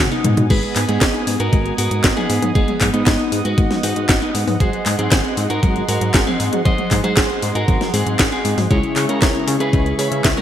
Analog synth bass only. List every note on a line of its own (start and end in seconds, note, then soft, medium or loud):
0.24 0.34 G#2 loud
0.37 0.47 G#2 medium
0.50 0.60 G#1 loud
0.76 0.85 G#2 medium
0.89 0.98 G#2 loud
1.01 1.11 G#1 loud
1.27 1.37 G#2 loud
1.40 1.50 G#2 medium
1.53 1.72 G#1 medium
1.78 1.88 G#2 medium
1.91 2.01 G#2 medium
2.04 2.14 G#1 loud
2.30 2.39 G#2 loud
2.42 2.52 G#2 medium
2.55 2.65 G#1 loud
2.81 2.91 G#2 medium
2.94 3.03 G#2 loud
3.07 3.16 G#1 medium
3.32 3.42 G#2 loud
3.45 3.55 G#2 medium
3.58 3.68 G#1 medium
3.83 3.93 G#2 loud
3.96 4.06 G#2 loud
4.09 4.19 G#1 medium
4.35 4.44 G#2 loud
4.47 4.57 G#2 medium
4.60 4.70 G#1 loud
4.86 4.96 G#2 loud
4.99 5.08 G#2 loud
5.12 5.21 G#1 loud
5.37 5.47 G#2 loud
5.50 5.60 G#2 medium
5.63 5.82 G#1 loud
5.88 5.98 G#2 medium
6.01 6.11 G#2 medium
6.14 6.24 G#1 loud
6.40 6.49 G#2 loud
6.53 6.62 G#2 medium
6.66 6.75 G#1 loud
6.91 7.01 G#2 medium
7.04 7.14 G#2 loud
7.17 7.26 G#1 loud
7.42 7.52 G#2 loud
7.55 7.65 G#2 medium
7.68 7.78 G#1 loud
7.94 8.03 G#2 loud
8.06 8.16 G#2 loud
8.19 8.29 G#1 medium
8.45 8.55 G#2 medium
8.58 8.67 G#2 medium
8.71 8.80 C#2 loud
8.96 9.06 C#3 medium
9.09 9.19 C#3 loud
9.22 9.32 C#2 loud
9.47 9.57 C#3 loud
9.60 9.70 C#3 medium
9.73 9.93 C#2 loud
9.99 10.08 C#3 medium
10.12 10.21 C#3 medium
10.24 10.34 C#2 loud